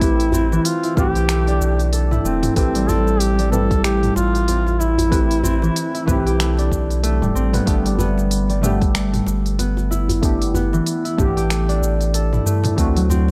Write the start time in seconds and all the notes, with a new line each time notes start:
Already playing: A1 G3 A3 C4 E4 G4
0.00 E3 A3 C4 G4 B4, kick, open hi-hat, shaker
0.20 open hi-hat, shaker
0.32 C4, djembe bass, shaker
0.52 E3, djembe slap, shaker
0.65 F4, open hi-hat, shaker
0.83 E4, open hi-hat, shaker
0.95 B1 E3 A3 C4 G4 B4, kick, mid tom, shaker
1.15 G4, open hi-hat, shaker
1.29 A3, finger snap, open hi-hat, shaker
1.47 D4, open hi-hat, djembe slap, shaker
1.61 B1, shaker
1.79 open hi-hat, shaker
1.93 A4, open hi-hat, shaker
2.11 E4, mid tom, djembe tone, shaker
2.24 E1 A3 C4, shaker
2.43 mid tom, open hi-hat, djembe slap, shaker
2.54 A1 E3 A3 C4 B4, kick, open hi-hat, shaker
2.58 G4
2.75 G3, open hi-hat, shaker
2.88 C4 A4, djembe bass, shaker
3.07 djembe slap, shaker
3.20 G4, open hi-hat, shaker
3.39 G3, open hi-hat, shaker
3.50 G3 A3 C4 E4 A4 B4, mid tom, shaker
3.54 G4
3.71 kick, open hi-hat, djembe tone, shaker
3.84 A3 G4, finger snap, open hi-hat, shaker
4.03 mid tom, open hi-hat, shaker
4.16 A1 F4, djembe slap, shaker
4.35 open hi-hat, shaker
4.48 C4, open hi-hat, djembe tone, shaker
4.66 djembe tone, shaker
4.80 E4, djembe tone, shaker
4.98 open hi-hat, djembe bass, shaker
5.09 E3 A3 C4 G4 B4, kick, open hi-hat, shaker
5.31 open hi-hat, shaker
5.43 C4, djembe bass, shaker
5.62 E3, djembe slap, shaker
5.76 open hi-hat, shaker
5.94 E4, open hi-hat, shaker
6.05 B1 E3 A3 C4 B4, kick, mid tom, shaker
6.09 G4
6.26 G4, open hi-hat, shaker
6.39 A3, finger snap, open hi-hat, shaker
6.57 D4, open hi-hat, djembe slap, shaker
6.72 B1, kick, shaker
6.90 open hi-hat, shaker
7.03 A3, open hi-hat, shaker
7.22 E1 G3, mid tom, djembe tone, shaker
7.35 A1 C4, shaker
7.53 B3, mid tom, open hi-hat, djembe slap, shaker
7.65 G1 F3 A3 B3 D4 G4, kick, open hi-hat, shaker
7.86 G3, open hi-hat, shaker
7.99 B3, djembe bass, shaker
8.18 djembe slap, shaker
8.31 open hi-hat, shaker
8.50 G3, open hi-hat, shaker
8.61 F3 A3 B3 D4 G4, mid tom, shaker
8.81 kick, open hi-hat, djembe tone, shaker
8.95 A3, finger snap, open hi-hat, shaker
9.14 mid tom, open hi-hat, shaker
9.27 G1, djembe slap, shaker
9.46 open hi-hat, shaker
9.59 B3, open hi-hat, djembe tone, shaker
9.77 djembe tone, shaker
9.91 E4, djembe tone, shaker
10.09 open hi-hat, djembe bass, shaker
10.21 A3 B3 D4 G4, kick, open hi-hat, shaker
10.42 open hi-hat, shaker
10.54 B3, djembe bass, shaker
10.73 E3, djembe slap, shaker
10.86 open hi-hat, shaker
11.05 E4, open hi-hat, shaker
11.17 A1 A3 B3 D4 G4, kick, mid tom, shaker
11.37 G4, open hi-hat, shaker
11.50 A3, finger snap, open hi-hat, shaker
11.69 D4, open hi-hat, djembe slap, shaker
11.82 A1, shaker
12.01 open hi-hat, shaker
12.14 A4, open hi-hat, shaker
12.33 E4, mid tom, djembe tone, shaker
12.46 G2 A3, shaker
12.64 mid tom, open hi-hat, djembe slap, shaker
12.76 D2 E3 A3 C4 D4, kick, open hi-hat, shaker
12.80 F#4
12.96 F#3, open hi-hat, shaker
13.10 C4, djembe bass, shaker